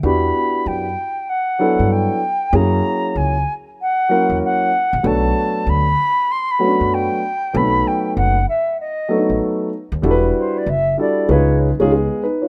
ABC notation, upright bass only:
X:1
M:4/4
L:1/16
Q:"Swing 16ths" 1/4=96
K:Em
V:1 name="Upright bass" clef=bass
E,,2 z2 F,,2 z4 z G,,2 z3 | F,,2 z2 ^C,,2 z4 z E,, z3 ^A,,, | B,,,2 z2 D,,2 z4 z F,,2 z3 | B,,,2 z2 F,,,2 z4 z A,,, z3 ^D,, |
E,,,2 z2 F,,,2 z2 ^C,,3 C,,2 z3 |]